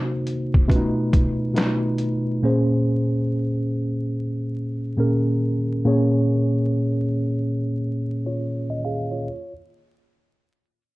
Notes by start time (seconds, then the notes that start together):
Already playing: C3 A#3 D#4 F#4 C5
0.27 closed hi-hat
0.54 kick
0.68 B2 A3 C#4 F4 B4, kick, closed hi-hat
0.76 D#4
1.13 kick, closed hi-hat
1.54 B2 A3 D#4 F4 B4, closed hi-hat
1.58 snare, clap
1.98 closed hi-hat
2.43 A#2 A#3 C#4 G#4 C5
4.97 A#2 A#3 C#4 G#4 A#4
5.85 A#2 A#3 C#4 G#4 C#5
8.26 F4 C#5
8.70 D#5
8.85 G#4 F5
9.12 F4 C#5